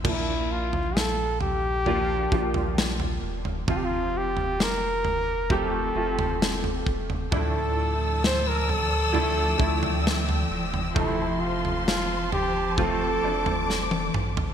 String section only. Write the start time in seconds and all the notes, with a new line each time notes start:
7.32 F3 D5 A5 E6
9.15 G5
10.97 C5 A5 C6
12.78 D6